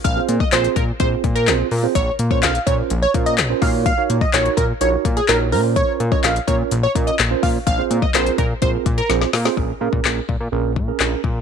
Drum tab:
HH |x-x-xxx-x-xxx-o-|x-x-xxx-x-xxx-o-|x-x-xxx-x-xxx-o-|x-x-xxx-x-xxx-o-|
CP |----x-------x---|----x-------x---|----x-------x---|----x-------x---|
SD |----o-------o---|----o-------o---|----o-------o---|----o-------o---|
BD |o--o--o-o-o-----|o--o--o---o---o-|o--o--o---o-----|o--o--o---o---o-|

HH |x-x-xxx-x-xxx-o-|----------------|
CP |----x-----------|----x-------x---|
SD |----o-------oooo|----o-------o---|
BD |o--o--o-o-o-----|o--o--o---o---o-|